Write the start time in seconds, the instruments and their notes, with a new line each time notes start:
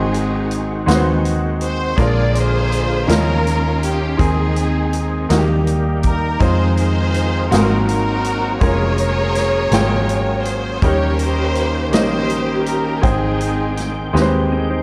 Already playing: fingered electric bass G#1, grand piano G#2 G#3 C4 D#4 F#4 C5, tonewheel organ D#3 G#3 C4 F#4, string section C4 D#4 G#4
0.14 closed hi-hat
0.51 closed hi-hat
0.86 fingered electric bass D#2, grand piano G#3 C4 D#4 F#4 B4, snare, closed hi-hat
0.95 grand piano C5
1.25 closed hi-hat
1.61 string section C5, closed hi-hat
1.96 fingered electric bass A#1, grand piano A#2 G#3 A#3 D4 F4 A#4, tonewheel organ D3 A#3 F4, string section F4 G#4 D5, kick, closed hi-hat
2.35 string section F4 G#4 C5, closed hi-hat
2.72 closed hi-hat
3.07 fingered electric bass D#2, grand piano D#3 G#3 C#4 D#4 F4 A#4, tonewheel organ D#3 C#4, string section C#4 F4 A#4, snare, closed hi-hat
3.47 closed hi-hat
3.83 string section G4, closed hi-hat
4.17 fingered electric bass D#2, grand piano D#3 C4 D#4 G#4, tonewheel organ C4 G#4, string section C4 D#4 G#4, kick, closed hi-hat
4.56 closed hi-hat
4.93 closed hi-hat
5.29 fingered electric bass D#2, grand piano D#3 A#3 D#4 F#4, tonewheel organ G3 A#3 G4, snare, closed hi-hat
5.38 grand piano G4
5.67 closed hi-hat
6.03 string section A#4, kick, closed hi-hat
6.40 fingered electric bass F2, grand piano G#3 C4 D#4 F4 C5, tonewheel organ G#3 C4 F4, string section D#4 G#4 C5, kick, closed hi-hat
6.77 string section D#4 G#4 C5, closed hi-hat
7.14 closed hi-hat
7.50 fingered electric bass G#1, grand piano G#2 G#3 C4 F#4 G#4 F5, tonewheel organ F#3 A#3 C4 F#4, string section D#4 F#4 A#4, snare, closed hi-hat
7.59 grand piano A#4
7.87 string section D#4 F#4 A#4, closed hi-hat
8.24 closed hi-hat
8.61 fingered electric bass F1, grand piano G#3 A#3 C#4 F4 A#4, tonewheel organ C#4 G#4, string section G#4 A#4 C#5, kick, closed hi-hat
8.98 closed hi-hat
9.35 snare, closed hi-hat
9.71 fingered electric bass G#1, grand piano G#3 A#3 C#4 F4 G5, snare, closed hi-hat
10.09 closed hi-hat
10.45 string section C5, closed hi-hat
10.82 fingered electric bass D#2, tonewheel organ D#3 G5, grand piano D#3 G3 A#3 C#4 D#4 A#4, string section G4 A#4 C#5, kick, closed hi-hat
11.19 string section G4 C5, closed hi-hat
11.55 closed hi-hat
11.92 fingered electric bass A#1, grand piano G3 A#3 C#4 D#4 D#5, string section G4 C5, snare, closed hi-hat
12.30 closed hi-hat
12.66 string section A#4, closed hi-hat
13.01 fingered electric bass G#1, grand piano G#2 G#3 C4 D#4 C5 G5, tonewheel organ G#3 C4, string section C4 G#4, kick, closed hi-hat
13.06 string section D#4
13.41 closed hi-hat
13.77 snare, closed hi-hat
14.13 fingered electric bass D#2, grand piano G#3 C4 D#4 G4 B4, snare
14.22 grand piano C5
14.52 clean electric guitar C4 G#4
14.70 clean electric guitar D#4 C5